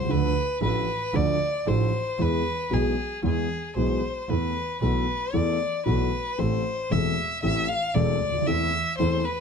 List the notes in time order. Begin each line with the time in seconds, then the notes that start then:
Already playing: C5
0.03 C#2
0.09 D2 D3 F3 A3 D4 A4 B4
0.61 A1 A2 F3 A3 D4 A4 B4
1.14 D2 D3 F3 A3 D4 A4 D5
1.66 A1 A2 F3 A3 D4 A4 C5
2.18 E2 E3 G#3 B3 G#4 B4
2.71 B1 B2 E3 G#3 B3 G#4
3.23 E2 E3 G#3 B3 G#4
3.76 B1 B2 E3 G#3 B3 G#4 C5
4.21 C5
4.28 E2 E3 A3 B3 A4 B4
4.81 B1 B2 E3 A3 B3 A4 B4
5.33 E2 E3 A3 B3 A4 D5
5.85 B1 B2 E3 A3 B3 A4 B4
6.38 A1 A2 E3 A3 C4 A4 C5
6.91 E1 E2 E3 A3 C4 A4 E5
7.43 A1 A2 E3 A3 C4 A4 E5
7.68 F5
7.94 E1 E2 E3 A3 C4 A4 D5
8.21 D2
8.28 C#2
8.34 D2
8.41 D#2
8.47 E2 E3 A3 C4 A4 E5
8.98 E2 E3 A3 C4 A4 C5
9.25 B4